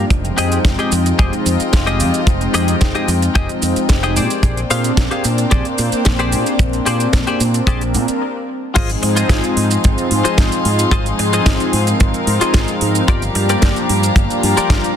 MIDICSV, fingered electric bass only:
0, 0, Header, 1, 3, 480
1, 0, Start_track
1, 0, Tempo, 540541
1, 99, Time_signature, 4, 2, 24, 8
1, 13287, End_track
2, 0, Start_track
2, 0, Title_t, "Fingered electric bass"
2, 0, Program_c, 0, 33
2, 92, Note_on_c, 0, 29, 95
2, 266, Note_off_c, 0, 29, 0
2, 339, Note_on_c, 0, 41, 76
2, 510, Note_off_c, 0, 41, 0
2, 574, Note_on_c, 0, 29, 92
2, 663, Note_off_c, 0, 29, 0
2, 817, Note_on_c, 0, 41, 95
2, 988, Note_off_c, 0, 41, 0
2, 1058, Note_on_c, 0, 29, 96
2, 1145, Note_off_c, 0, 29, 0
2, 1296, Note_on_c, 0, 41, 86
2, 1384, Note_off_c, 0, 41, 0
2, 1540, Note_on_c, 0, 29, 92
2, 1774, Note_on_c, 0, 41, 76
2, 1788, Note_off_c, 0, 29, 0
2, 1863, Note_off_c, 0, 41, 0
2, 2015, Note_on_c, 0, 29, 96
2, 2187, Note_off_c, 0, 29, 0
2, 2255, Note_on_c, 0, 41, 73
2, 2428, Note_off_c, 0, 41, 0
2, 2498, Note_on_c, 0, 29, 94
2, 2585, Note_off_c, 0, 29, 0
2, 2735, Note_on_c, 0, 41, 91
2, 2907, Note_off_c, 0, 41, 0
2, 2979, Note_on_c, 0, 29, 96
2, 3065, Note_off_c, 0, 29, 0
2, 3217, Note_on_c, 0, 41, 83
2, 3305, Note_off_c, 0, 41, 0
2, 3460, Note_on_c, 0, 29, 91
2, 3697, Note_on_c, 0, 46, 74
2, 3710, Note_off_c, 0, 29, 0
2, 3784, Note_off_c, 0, 46, 0
2, 3934, Note_on_c, 0, 34, 96
2, 4107, Note_off_c, 0, 34, 0
2, 4178, Note_on_c, 0, 46, 75
2, 4349, Note_off_c, 0, 46, 0
2, 4415, Note_on_c, 0, 34, 97
2, 4504, Note_off_c, 0, 34, 0
2, 4660, Note_on_c, 0, 46, 91
2, 4830, Note_off_c, 0, 46, 0
2, 4900, Note_on_c, 0, 34, 96
2, 4986, Note_off_c, 0, 34, 0
2, 5140, Note_on_c, 0, 46, 86
2, 5226, Note_off_c, 0, 46, 0
2, 5383, Note_on_c, 0, 34, 93
2, 5618, Note_on_c, 0, 46, 78
2, 5632, Note_off_c, 0, 34, 0
2, 5705, Note_off_c, 0, 46, 0
2, 5853, Note_on_c, 0, 34, 99
2, 6026, Note_off_c, 0, 34, 0
2, 6097, Note_on_c, 0, 46, 76
2, 6269, Note_off_c, 0, 46, 0
2, 6336, Note_on_c, 0, 34, 100
2, 6424, Note_off_c, 0, 34, 0
2, 6574, Note_on_c, 0, 46, 95
2, 6747, Note_off_c, 0, 46, 0
2, 6810, Note_on_c, 0, 34, 86
2, 7058, Note_on_c, 0, 46, 96
2, 7071, Note_off_c, 0, 34, 0
2, 7145, Note_off_c, 0, 46, 0
2, 7779, Note_on_c, 0, 32, 100
2, 7950, Note_off_c, 0, 32, 0
2, 8018, Note_on_c, 0, 44, 76
2, 8189, Note_off_c, 0, 44, 0
2, 8253, Note_on_c, 0, 32, 100
2, 8342, Note_off_c, 0, 32, 0
2, 8496, Note_on_c, 0, 44, 96
2, 8668, Note_off_c, 0, 44, 0
2, 8745, Note_on_c, 0, 32, 98
2, 8829, Note_off_c, 0, 32, 0
2, 8978, Note_on_c, 0, 44, 91
2, 9065, Note_off_c, 0, 44, 0
2, 9217, Note_on_c, 0, 32, 93
2, 9304, Note_off_c, 0, 32, 0
2, 9460, Note_on_c, 0, 44, 82
2, 9630, Note_off_c, 0, 44, 0
2, 9693, Note_on_c, 0, 32, 102
2, 9866, Note_off_c, 0, 32, 0
2, 9939, Note_on_c, 0, 44, 78
2, 10110, Note_off_c, 0, 44, 0
2, 10178, Note_on_c, 0, 32, 98
2, 10265, Note_off_c, 0, 32, 0
2, 10418, Note_on_c, 0, 44, 92
2, 10589, Note_off_c, 0, 44, 0
2, 10662, Note_on_c, 0, 32, 99
2, 10747, Note_off_c, 0, 32, 0
2, 10897, Note_on_c, 0, 44, 90
2, 10984, Note_off_c, 0, 44, 0
2, 11137, Note_on_c, 0, 32, 94
2, 11224, Note_off_c, 0, 32, 0
2, 11380, Note_on_c, 0, 44, 82
2, 11550, Note_off_c, 0, 44, 0
2, 11618, Note_on_c, 0, 31, 100
2, 11789, Note_off_c, 0, 31, 0
2, 11857, Note_on_c, 0, 43, 77
2, 12029, Note_off_c, 0, 43, 0
2, 12100, Note_on_c, 0, 31, 98
2, 12186, Note_off_c, 0, 31, 0
2, 12339, Note_on_c, 0, 43, 98
2, 12510, Note_off_c, 0, 43, 0
2, 12573, Note_on_c, 0, 31, 102
2, 12662, Note_off_c, 0, 31, 0
2, 12817, Note_on_c, 0, 43, 91
2, 12904, Note_off_c, 0, 43, 0
2, 13052, Note_on_c, 0, 31, 96
2, 13142, Note_off_c, 0, 31, 0
2, 13287, End_track
3, 0, Start_track
3, 0, Title_t, "Muted fingered electric bass strokes"
3, 1419, Note_on_c, 9, 29, 42
3, 1508, Note_off_c, 9, 29, 0
3, 3339, Note_on_c, 9, 29, 40
3, 3428, Note_off_c, 9, 29, 0
3, 5263, Note_on_c, 9, 29, 43
3, 5352, Note_off_c, 9, 29, 0
3, 7182, Note_on_c, 9, 29, 42
3, 7271, Note_off_c, 9, 29, 0
3, 9100, Note_on_c, 9, 29, 44
3, 9189, Note_off_c, 9, 29, 0
3, 11023, Note_on_c, 9, 29, 43
3, 11111, Note_off_c, 9, 29, 0
3, 12943, Note_on_c, 9, 29, 43
3, 13031, Note_off_c, 9, 29, 0
3, 13287, End_track
0, 0, End_of_file